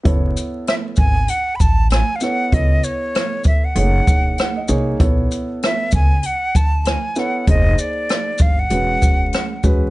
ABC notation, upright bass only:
X:1
M:4/4
L:1/16
Q:"Swing 16ths" 1/4=97
K:F#dor
V:1 name="Upright bass" clef=bass
F,,,2 z4 G,,,2 z2 A,,,3 z3 | C,,2 z6 F,,,2 E,,,2 z2 ^B,,,2 | B,,,2 z4 C,,2 z2 =D,,3 z3 | =F,,,2 z4 =G,,,2 E,,,2 E,,,2 z2 E,,2 |]